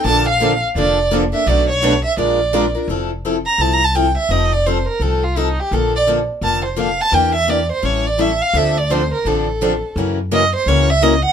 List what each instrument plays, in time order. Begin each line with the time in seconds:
0.04 upright bass A#1, steel-string acoustic guitar D3 F3 A#3 D4 A4, violin A5
0.29 violin F5
0.40 steel-string acoustic guitar D3 F3 A#3 D4 A4
0.75 upright bass F1, steel-string acoustic guitar D3 F3 A#3 D4 A4, violin D5
1.11 steel-string acoustic guitar D3 F3 A#3 D4 A4
1.32 steel-string acoustic guitar A#3 D4 A4, violin E5
1.47 upright bass B1, steel-string acoustic guitar B2 F#3 A3 D4 F#4 B4, violin D5
1.70 violin C#5
1.82 steel-string acoustic guitar B2 F#3 A3 D4 F#4 B4
2.05 violin E5
2.17 upright bass A#1, steel-string acoustic guitar F3 G#3 D4 F4 A#4, violin D5
2.53 steel-string acoustic guitar F3 G#3 D4 F4 A#4
2.75 steel-string acoustic guitar D4 F4 A#4
2.88 upright bass F1, steel-string acoustic guitar F3 C4 E4 A4
3.25 steel-string acoustic guitar F3 C4 E4 A4
3.46 violin A#5
3.58 upright bass C2, steel-string acoustic guitar F3 C4 E4 A4, violin A5
3.73 violin A#5
3.85 violin A5
3.95 steel-string acoustic guitar F3 C4 E4 A4, violin G5
4.18 violin E5
4.29 upright bass F1, steel-string acoustic guitar F3 C4 D#4 A4, violin D#5
4.53 violin D5
4.66 steel-string acoustic guitar F3 C4 D#4 A4, violin C5
4.88 violin A#4
5.00 upright bass C2, steel-string acoustic guitar F3 C4 D#4 A4, violin A4
5.24 violin F4
5.36 steel-string acoustic guitar F3 C4 D#4 A4, violin D#4
5.60 violin G4
5.71 upright bass A#1, steel-string acoustic guitar D3 F3 A#3 D4 A4, violin A4
5.96 violin D5
6.07 steel-string acoustic guitar D3 F3 A#3 D4 A4
6.41 upright bass F1, steel-string acoustic guitar D3 F3 A#3 D4 A4, violin A5
6.65 violin C5
6.76 steel-string acoustic guitar D3 F3 A#3 D4 A4, violin F5
7.01 violin A5
7.12 upright bass E2, steel-string acoustic guitar E3 A#3 D4 G4, violin G5
7.35 violin E5
7.47 steel-string acoustic guitar E3 A#3 D4 G4, violin D5
7.72 violin C5
7.82 upright bass A1, steel-string acoustic guitar E3 G3 C#4 E4 A4, violin C#5
8.07 violin D5
8.18 steel-string acoustic guitar E3 G3 C#4 E4 A4, violin E5
8.42 violin F5
8.54 upright bass D2, steel-string acoustic guitar D3 F3 C4 D4 A4, violin E5
8.78 violin D5
8.90 steel-string acoustic guitar D3 F3 C4 D4 A4, violin C5
9.14 violin A#4
9.25 upright bass A1, steel-string acoustic guitar D3 F3 C4 D4 A4, violin A4
9.61 steel-string acoustic guitar D3 F3 C4 D4 A4
9.96 upright bass F#2, steel-string acoustic guitar C#3 E3 F#3 A#3 C#4 E4 F#4 A#4
10.31 steel-string acoustic guitar C#3 E3 F#3 A#3 C#4 E4 F#4 A#4, violin D#5
10.56 violin C5
10.66 upright bass C#2, steel-string acoustic guitar C#3 E3 F#3 A#3 C#4 E4 F#4 A#4, violin C#5
10.90 violin E5
11.02 steel-string acoustic guitar C#3 E3 F#3 A#3 C#4 E4 F#4 A#4, violin D#5
11.25 violin F#5